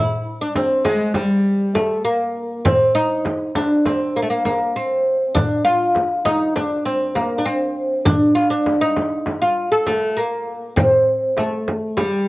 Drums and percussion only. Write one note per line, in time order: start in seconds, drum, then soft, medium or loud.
0.56 darbuka tek medium
0.56 frame drum medium
0.85 darbuka tek medium
0.85 frame drum medium
1.14 darbuka tek medium
1.14 frame drum medium
1.32 darbuka ka soft
1.46 darbuka ka soft
1.75 darbuka tek medium
1.75 frame drum medium
2.05 darbuka ka soft
2.36 darbuka ka soft
2.65 frame drum medium
2.65 darbuka dum medium
2.96 darbuka ka soft
3.25 darbuka tek medium
3.25 frame drum medium
3.55 darbuka tek medium
3.55 frame drum medium
3.86 darbuka tek medium
3.86 frame drum medium
4.00 darbuka ka soft
4.15 darbuka ka soft
4.45 darbuka tek medium
4.45 frame drum medium
4.75 darbuka ka soft
5.06 darbuka ka soft
5.35 darbuka dum medium
5.35 frame drum medium
5.95 darbuka tek medium
5.95 frame drum medium
6.25 darbuka tek medium
6.25 frame drum medium
6.56 darbuka tek medium
6.56 frame drum medium
6.71 darbuka ka soft
7.15 darbuka tek medium
7.15 frame drum medium
7.75 darbuka ka soft
8.05 darbuka dum medium
8.05 frame drum medium
8.36 darbuka ka soft
8.66 darbuka tek medium
8.66 frame drum medium
8.97 darbuka tek medium
8.97 frame drum medium
9.26 darbuka tek medium
9.26 frame drum medium
9.42 darbuka ka soft
9.57 darbuka ka soft
9.87 darbuka tek medium
9.87 frame drum medium
10.18 darbuka ka soft
10.47 darbuka ka soft
10.77 darbuka dum medium
10.77 frame drum medium
10.91 darbuka ka soft
11.07 darbuka ka soft
11.37 darbuka tek medium
11.37 frame drum medium
11.68 frame drum medium
11.97 darbuka tek medium
11.97 frame drum medium
12.12 darbuka ka soft